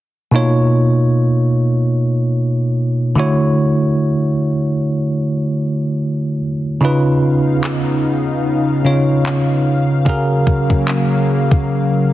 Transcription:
0.31 B2 A#3 D#4 F4
0.36 C#5
3.15 D3 A3 E4 F#4
3.19 C#5
6.81 C#3 B3 C#4 D#4 F4 F5
6.85 B4
7.64 clap
8.85 C#3 C#4 D#4 F4 C#5
9.26 clap
10.05 C#3 F#3 A#3 C#4 F#4 G#4 F5, kick
10.09 A#4
10.47 kick
10.70 kick
10.88 clap
11.51 kick

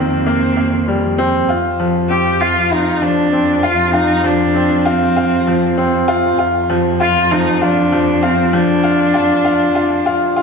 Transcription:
Already playing: F2 D#3 A#3 C4
0.26 A#3
0.57 A#3
0.88 G3
1.18 C4
1.49 F2 F4
1.80 F3
2.10 C4 G4
2.41 F4
2.71 D#4 F4
3.02 F3 D4
3.33 C4
3.63 F4
3.93 D#4 F4
4.24 F3 D4
4.55 C4
4.85 C4 F4
5.17 F4
5.47 F3
5.78 C4
6.08 F4
6.39 F2 F4
6.70 F3
7.00 F4
7.31 F3 D#4
7.62 D4 F4
7.92 F3
8.23 C4 F4
8.53 F3 D4
8.84 F4
9.14 F4
9.45 F4
9.75 F4
10.06 F4
10.37 F4

